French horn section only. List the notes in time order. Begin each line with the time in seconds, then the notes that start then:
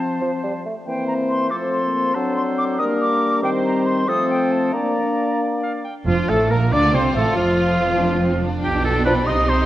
Already playing: F3 C4
0.86 A#3 C4
1.51 A3 C4
1.84 A#3
2.16 C4 D4
2.80 A#3 D4
3.43 G3 C4
4.07 A3 C4
4.74 A#3 D4
6.07 F3
6.28 A3
6.50 A#3
6.71 D4
6.93 C4
7.14 A3
7.36 F3
9.06 F3 D4